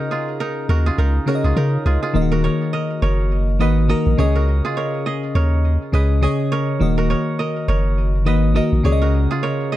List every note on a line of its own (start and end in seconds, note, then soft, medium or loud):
0.00 0.46 C#3 loud
0.00 0.47 C#4 medium
0.00 0.41 D#4 medium
0.00 0.18 F#4 medium
0.00 0.11 G#4 medium
0.00 0.47 G#4 medium
0.00 0.40 A#4 loud
0.00 0.51 D#5 loud
0.11 0.76 F4 medium
0.11 0.86 G#4 medium
0.40 0.99 D#4 medium
0.40 0.69 A#4 medium
0.69 0.91 D#2 loud
0.69 0.93 F#4 medium
0.69 0.98 A#4 medium
0.86 1.34 F4 medium
0.86 1.44 G#4 medium
0.98 1.20 C#2 medium
0.98 1.57 D#4 medium
0.98 1.27 A#4 medium
1.26 1.95 C#3 medium
1.26 1.95 C#4 medium
1.26 1.51 F#4 medium
1.26 1.95 G#4 medium
1.26 1.56 A#4 medium
1.26 1.35 C#5 medium
1.35 1.99 D#5 loud
1.44 1.53 C#2 medium
1.44 1.86 F4 medium
1.44 1.85 G#4 medium
1.56 1.78 C#3 loud
1.56 3.20 D#4 medium
1.56 2.31 A#4 medium
1.86 1.98 C#2 medium
1.86 2.03 F4 medium
1.86 2.02 G#4 medium
2.03 2.38 F4 medium
2.03 3.39 G#4 medium
2.13 2.49 D#1 loud
2.13 3.03 D#3 medium
2.13 3.03 A#3 medium
2.13 2.22 F4 medium
2.13 3.04 D#5 loud
2.22 3.07 F#4 medium
2.32 3.79 F#4 medium
2.32 2.44 A#4 medium
2.44 2.73 A#4 medium
2.44 3.02 C#5 medium
2.73 3.03 A#4 medium
2.73 3.60 D#5 medium
3.02 3.62 F#1 medium
3.02 3.67 A#4 medium
3.02 4.17 C#5 medium
3.59 3.94 G#1 loud
3.59 3.83 D#3 medium
3.59 3.83 A#3 medium
3.59 3.84 F#4 medium
3.59 3.96 B4 medium
3.59 3.89 D#5 medium
3.59 3.84 D#5 medium
3.88 4.18 D#3 medium
3.88 4.18 A#3 medium
3.88 4.19 F#4 medium
3.88 4.35 A#4 medium
3.88 4.19 A#4 loud
3.88 4.97 D#5 medium
4.06 4.15 A#1 loud
4.17 4.61 C#2 loud
4.17 5.12 C#3 loud
4.17 5.13 C#4 medium
4.17 5.13 G#4 medium
4.17 4.64 G#4 medium
4.17 4.76 C#5 medium
4.17 5.13 D#5 loud
4.36 4.71 F#4 medium
4.36 4.77 A#4 medium
4.65 6.17 F4 medium
4.65 5.06 G#4 medium
4.77 5.36 A#4 medium
4.77 5.35 C#5 medium
5.06 6.23 G#4 medium
5.06 5.93 D#5 medium
5.35 5.78 D#2 loud
5.35 6.00 A#4 medium
5.35 6.50 C#5 medium
5.92 6.27 C#2 loud
5.92 6.16 C#3 medium
5.92 6.16 C#4 medium
5.92 6.17 G#4 medium
5.92 6.59 B4 medium
5.92 6.22 D#5 medium
5.92 6.17 D#5 medium
6.21 6.69 C#3 medium
6.21 6.69 C#4 medium
6.21 6.69 G#4 medium
6.21 7.60 G#4 medium
6.21 6.70 C#5 loud
6.21 7.30 D#5 medium
6.52 6.97 A#4 medium
6.52 7.10 C#5 medium
6.80 7.15 D#1 loud
6.80 7.69 D#3 medium
6.80 7.70 A#3 medium
6.80 7.70 F#4 medium
6.80 7.70 D#5 loud
6.98 8.45 F#4 medium
6.98 7.10 A#4 medium
7.10 7.40 A#4 medium
7.10 7.68 C#5 medium
7.39 7.69 A#4 medium
7.39 8.26 D#5 medium
7.68 8.28 F#1 medium
7.68 8.33 A#4 medium
7.68 8.83 C#5 medium
8.25 8.60 G#1 loud
8.25 8.49 D#3 medium
8.25 8.49 A#3 medium
8.25 8.50 F#4 medium
8.25 8.62 B4 medium
8.25 8.55 D#5 medium
8.25 8.50 D#5 medium
8.54 8.84 D#3 medium
8.54 8.84 A#3 medium
8.54 8.85 F#4 medium
8.54 9.01 A#4 medium
8.54 9.63 D#5 medium
8.54 8.85 D#5 loud
8.72 8.81 A#1 loud
8.83 9.27 C#2 loud
8.83 9.77 C#3 loud
8.83 9.77 C#4 medium
8.83 9.77 G#4 medium
8.83 9.30 G#4 medium
8.83 9.42 C#5 medium
8.83 8.93 D5 medium
8.92 9.77 D#5 loud
9.02 9.38 F#4 medium
9.02 9.43 A#4 medium
9.31 9.77 F4 medium
9.31 9.73 G#4 medium
9.43 9.77 A#4 medium
9.43 9.77 C#5 medium
9.72 9.77 G#4 medium
9.72 9.77 D#5 medium